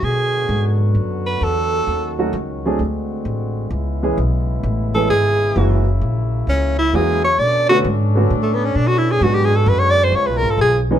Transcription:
0.02 0.48 B2 medium
0.02 1.86 D3 medium
0.02 2.77 F#3 medium
0.02 1.86 B3 medium
0.02 2.77 F#4 loud
0.02 0.81 G#4 loud
0.49 0.94 G#2 loud
0.95 1.40 F#2 medium
1.27 1.45 B4 medium
1.41 1.86 E2 medium
1.41 2.19 A4 loud
1.87 2.32 D#2 medium
1.87 2.79 D#3 medium
1.87 2.79 C#4 medium
2.18 2.32 F#3 medium
2.18 2.33 A3 medium
2.18 2.33 C#4 medium
2.18 2.33 D#4 medium
2.18 2.33 F#4 medium
2.33 2.78 C#2 medium
2.65 2.79 F#3 medium
2.65 2.79 A3 medium
2.65 2.79 C4 medium
2.65 2.79 D4 medium
2.65 2.79 G#4 medium
2.79 3.24 D2 medium
2.79 3.71 D3 medium
2.79 5.52 G#3 medium
2.79 3.71 C4 medium
2.79 3.71 F#4 medium
3.25 3.70 A1 medium
3.70 4.16 C#2 medium
3.70 7.35 C#3 medium
3.70 5.53 B3 medium
3.70 7.35 E4 medium
4.03 4.17 E3 medium
4.03 4.16 G#3 medium
4.03 4.17 B3 medium
4.03 4.17 C#4 medium
4.03 4.17 G#4 medium
4.18 4.62 B1 medium
4.63 5.08 A1 medium
4.95 5.09 E3 medium
4.95 5.09 G#3 medium
4.95 5.09 B3 medium
4.95 5.09 C#4 medium
4.95 5.09 G#4 medium
4.95 5.09 A4 loud
5.09 5.54 G#1 medium
5.09 5.82 G#4 loud
5.56 6.00 F#1 medium
5.56 5.83 E3 medium
5.56 7.37 F#3 medium
5.56 5.83 G#3 medium
5.56 7.37 A#3 medium
5.56 5.84 A#3 medium
5.56 5.84 C#4 medium
5.56 5.84 F#4 medium
6.01 6.46 A#1 medium
6.47 6.92 C#2 medium
6.47 6.77 C#4 medium
6.79 6.97 E4 loud
6.93 7.37 E2 medium
6.93 7.21 E3 medium
6.93 7.21 G#3 medium
6.93 7.21 A#3 medium
6.93 7.21 C#4 medium
6.93 7.22 F#4 medium
6.93 7.24 G#4 loud
7.25 7.41 C#5 loud
7.39 7.83 B2 medium
7.39 10.88 B3 medium
7.39 9.21 C#4 loud
7.39 9.21 D4 loud
7.39 9.21 A4 medium
7.39 7.69 D5 loud
7.69 7.83 D3 medium
7.69 7.84 A3 medium
7.69 7.84 B3 medium
7.69 7.84 C#4 medium
7.69 7.79 F#4 loud
7.69 7.84 F#4 medium
7.84 8.29 G#2 loud
8.15 8.29 D3 medium
8.15 8.29 A3 medium
8.15 8.29 B3 medium
8.15 8.30 C#4 medium
8.15 8.30 F#4 medium
8.30 8.75 A2 medium
8.43 8.56 A3 medium
8.54 8.67 B3 loud
8.65 8.78 C#4 medium
8.75 9.20 B2 medium
8.75 8.89 D4 loud
8.87 9.00 F#4 loud
8.98 9.13 E4 loud
9.11 9.25 G#4 loud
9.21 9.66 G#2 loud
9.21 10.13 D3 medium
9.21 9.50 F#3 medium
9.21 10.88 G#3 medium
9.21 9.50 G#3 soft
9.21 9.50 B3 medium
9.21 9.50 D4 medium
9.21 10.13 F#4 medium
9.21 9.36 F#4 loud
9.21 9.51 F#4 medium
9.35 9.46 G4 loud
9.45 9.57 G#4 loud
9.56 9.70 A4 medium
9.66 10.12 F#2 loud
9.66 9.80 B4 loud
9.79 9.92 C#5 loud
9.91 10.05 D5 loud
10.04 10.17 C5 loud
10.12 10.28 C#2 medium
10.12 10.88 C#3 medium
10.12 10.88 F4 medium
10.12 10.28 C#5 loud
10.27 10.42 B1 medium
10.27 10.39 B4 loud
10.38 10.52 A#4 loud
10.43 10.57 G#1 medium
10.50 10.59 A4 loud
10.58 10.99 B1 medium
10.58 10.79 G#4 loud
10.91 10.99 E3 medium
10.91 10.99 G#3 medium
10.91 10.99 B3 medium
10.91 10.99 C#4 medium
10.91 10.99 D#4 medium

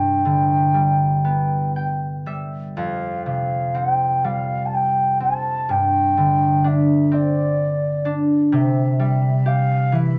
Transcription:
0.00 2.81 G2 soft
0.00 1.92 E4 soft
0.00 0.75 G4 soft
0.00 1.72 G5 medium
0.25 2.81 D3 soft
0.74 2.25 G3 soft
1.25 3.32 B3 soft
1.76 3.31 G5 soft
2.26 2.81 G3 soft
2.26 2.83 E5 soft
2.77 5.73 F2 soft
2.77 3.22 F5 medium
3.26 5.73 C3 soft
3.26 3.78 F5 medium
3.75 5.20 C4 soft
3.75 4.26 G5 medium
4.24 5.73 G3 soft
4.24 4.67 F5 medium
4.65 4.75 A5 medium
4.74 5.21 G5 medium
5.20 7.11 C4 soft
5.20 5.72 A5 medium
5.69 8.57 G2 medium
5.69 6.69 G5 medium
6.17 8.57 D3 soft
6.64 8.05 D4 soft
6.64 7.15 E5 medium
7.12 10.12 C4 soft
7.12 8.18 D5 medium
8.05 10.19 D4 medium
8.52 10.19 C3 medium
8.52 8.97 E5 medium
8.99 10.19 G3 soft
8.99 9.48 E5 medium
9.46 10.19 G4 soft
9.46 9.96 F5 medium
9.92 10.19 E3 medium
9.92 10.19 E5 medium

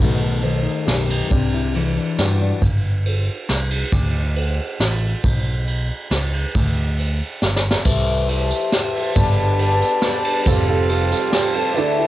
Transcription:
0.00 0.66 B1 medium
0.00 0.45 B2 medium
0.00 0.42 D#3 medium
0.00 1.30 A3 medium
0.00 0.64 D#4 medium
0.00 0.23 F#4 medium
0.00 kick medium
0.00 ride medium
0.24 0.86 A4 soft
0.43 1.28 D#3 medium
0.43 ride medium
0.65 1.08 D#4 medium
0.86 1.20 B1 medium
0.86 1.28 F#2 medium
0.86 1.28 G4 medium
0.86 snare medium
0.86 ride medium
1.09 1.28 D#4 soft
1.09 ride medium
1.30 1.97 C2 medium
1.30 1.74 C3 medium
1.30 1.96 D4 medium
1.30 kick loud
1.30 ride medium
1.54 2.19 E4 medium
1.74 2.59 E3 medium
1.74 ride soft
1.97 2.41 D4 soft
2.18 2.51 G2 medium
2.18 2.60 G2 medium
2.18 2.61 F#4 soft
2.18 snare medium
2.18 ride soft
2.42 2.60 D4 soft
2.62 3.28 G1 medium
2.62 kick medium
2.62 ride soft
3.05 ride medium
3.49 3.82 C2 medium
3.49 snare medium
3.49 ride medium
3.71 ride medium
3.92 4.58 D2 medium
3.92 kick medium
3.92 ride medium
4.36 ride medium
4.80 5.13 A1 medium
4.80 snare medium
4.80 ride soft
5.24 5.90 B1 medium
5.24 kick medium
5.24 ride medium
5.67 ride soft
6.11 6.44 C#2 medium
6.11 snare medium
6.11 ride soft
6.33 ride medium
6.55 7.20 D2 medium
6.55 kick loud
6.55 ride medium
6.98 ride medium
7.42 7.75 G1 medium
7.42 snare medium
7.56 snare medium
7.71 snare medium
7.85 8.51 C2 medium
7.85 8.29 C3 medium
7.85 8.27 E3 medium
7.85 8.28 A3 medium
7.85 8.28 E4 medium
7.85 10.44 G4 medium
7.85 8.30 G4 medium
7.85 9.15 C5 medium
7.85 9.14 E5 medium
7.85 12.07 A5 medium
7.85 kick loud
7.85 crash medium
7.85 tambourine medium
7.97 tambourine soft
8.28 8.69 E3 medium
8.28 8.71 A3 medium
8.28 8.71 E4 medium
8.28 8.73 G4 medium
8.28 ride medium
8.28 tambourine soft
8.51 tambourine medium
8.71 9.15 E3 medium
8.71 9.15 A3 medium
8.71 9.16 E4 medium
8.71 9.16 G4 medium
8.71 snare medium
8.71 ride medium
8.94 ride medium
9.15 9.82 G1 medium
9.15 9.59 G3 medium
9.15 9.59 B3 medium
9.15 9.60 D4 medium
9.15 9.61 A4 medium
9.15 10.45 B4 medium
9.15 10.45 D5 medium
9.15 kick loud
9.15 ride medium
9.15 tambourine medium
9.28 tambourine soft
9.59 9.81 G3 medium
9.59 9.82 B3 medium
9.59 9.81 D4 medium
9.59 9.79 A4 medium
9.59 ride medium
9.59 tambourine soft
9.80 10.02 B3 soft
9.80 10.02 D4 soft
9.80 10.02 A4 soft
9.80 tambourine medium
10.02 10.44 G3 medium
10.02 10.46 B3 medium
10.02 10.47 D4 medium
10.02 10.47 A4 medium
10.02 snare medium
10.02 ride medium
10.24 ride medium
10.46 11.12 F1 medium
10.46 11.73 F1 medium
10.46 11.73 F2 medium
10.46 10.90 F3 medium
10.46 10.88 G3 medium
10.46 10.66 G3 medium
10.46 10.89 C4 medium
10.46 10.66 C4 medium
10.46 10.66 F4 medium
10.46 10.89 F4 medium
10.46 11.75 G4 medium
10.46 10.66 A4 loud
10.46 10.91 A4 medium
10.46 11.76 C5 medium
10.46 11.76 F5 medium
10.46 kick loud
10.46 tambourine medium
10.58 tambourine soft
10.69 10.89 G3 medium
10.69 10.88 C4 medium
10.69 10.88 F4 medium
10.69 10.88 A4 medium
10.89 11.30 G3 medium
10.89 11.10 G3 medium
10.89 11.31 C4 medium
10.89 11.10 C4 medium
10.89 11.32 F4 medium
10.89 11.10 F4 medium
10.89 11.10 A4 medium
10.89 11.34 A4 medium
10.89 ride medium
10.89 tambourine soft
11.12 11.31 G3 medium
11.12 11.32 C4 medium
11.12 11.31 F4 medium
11.12 11.31 A4 medium
11.12 tambourine loud
11.32 11.54 G3 medium
11.32 11.53 G3 medium
11.32 11.55 C4 medium
11.32 11.53 C4 medium
11.32 11.53 F4 medium
11.32 11.54 F4 medium
11.32 11.53 G4 medium
11.32 11.52 A4 medium
11.32 snare medium
11.32 ride medium
11.53 11.75 G3 medium
11.53 11.75 C4 medium
11.53 11.74 C4 soft
11.53 11.74 F4 medium
11.53 11.75 F4 medium
11.53 11.74 A4 medium
11.53 11.75 A4 medium
11.53 ride medium
11.73 12.07 D3 medium
11.73 12.07 E3 medium
11.73 12.07 A3 medium
11.73 12.07 E4 medium
11.73 11.96 E4 medium
11.73 12.07 A4 medium
11.73 12.07 D5 medium
11.77 12.07 D2 medium
11.77 12.07 D3 medium
11.77 11.97 A3 medium
11.77 11.97 D4 medium
11.77 11.97 D5 loud
11.98 12.07 A3 medium
11.98 12.07 D4 medium
11.98 12.07 E4 medium
11.98 12.07 G4 medium

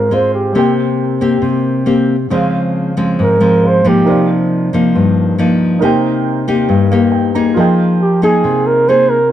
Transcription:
0.00 0.53 G#2 medium
0.00 0.11 G#4 soft
0.00 0.16 A#4 medium
0.11 0.52 G#3 soft
0.11 0.52 C4 medium
0.11 0.52 F4 soft
0.11 0.55 G#4 soft
0.11 0.56 C5 soft
0.11 0.34 C5 medium
0.11 0.57 F5 soft
0.34 0.75 G4 medium
0.53 1.41 C3 medium
0.53 1.18 A#3 soft
0.53 2.26 C4 soft
0.53 1.18 C4 soft
0.53 1.18 G4 medium
0.53 2.28 A#4 soft
0.59 2.29 G5 medium
1.21 1.84 A#3 medium
1.21 1.84 C4 medium
1.21 1.84 G4 medium
1.42 2.28 C3 medium
1.86 2.15 A#3 medium
1.86 2.15 C4 soft
1.86 2.15 G4 medium
2.30 3.16 C#3 medium
2.30 2.93 F3 medium
2.30 2.93 G#3 medium
2.30 2.93 C4 medium
2.30 3.60 G#4 medium
2.30 3.61 C5 medium
2.35 3.62 F5 medium
2.97 3.37 F3 medium
2.97 3.37 G#3 medium
2.97 3.37 C4 medium
3.19 4.04 G#2 medium
3.23 3.69 A#4 medium
3.40 3.81 F3 medium
3.40 3.81 G#3 medium
3.40 3.81 C4 medium
3.63 4.07 G#4 soft
3.63 4.06 C5 soft
3.63 4.08 F5 soft
3.67 3.90 C5 medium
3.85 4.69 F3 medium
3.85 4.69 A#3 medium
3.85 4.69 D#4 medium
3.85 4.30 G4 medium
4.05 4.92 C3 medium
4.05 5.77 D#4 soft
4.05 5.78 A#4 soft
4.05 5.79 C5 soft
4.09 5.80 D5 soft
4.09 5.80 F5 medium
4.73 5.35 F3 medium
4.73 5.35 A#3 soft
4.73 5.35 D#4 medium
4.95 5.80 G2 medium
5.38 5.79 F3 medium
5.38 5.79 A#3 medium
5.38 5.79 D#4 medium
5.79 6.67 C3 medium
5.79 6.44 A#3 medium
5.79 7.52 D#4 medium
5.79 6.44 D#4 medium
5.79 6.44 G4 medium
5.79 7.53 A#4 medium
5.79 7.54 C5 medium
5.85 7.10 G5 medium
6.48 6.88 A#3 medium
6.48 6.88 D#4 medium
6.48 6.88 G4 medium
6.69 7.55 G2 medium
6.91 7.32 A#3 medium
6.91 7.32 D#4 medium
6.91 7.32 G4 medium
6.91 7.11 F5 medium
7.12 7.33 G5 medium
7.35 7.99 A#3 medium
7.35 7.99 D#4 medium
7.35 8.00 G#4 medium
7.35 7.55 A#5 medium
7.54 8.42 F3 medium
7.54 9.28 F4 medium
7.54 9.29 G#4 medium
7.54 9.29 A#4 medium
7.59 9.30 D#5 medium
7.59 9.31 G5 medium
8.02 8.22 G4 medium
8.22 8.85 A#3 medium
8.22 8.85 D#4 medium
8.22 8.85 G#4 medium
8.22 8.68 G#4 medium
8.44 9.30 C3 medium
8.67 8.90 A#4 medium
8.88 9.17 A#3 medium
8.88 9.17 D#4 medium
8.88 9.17 G#4 medium
8.88 9.12 C5 loud
9.10 9.31 A#4 medium

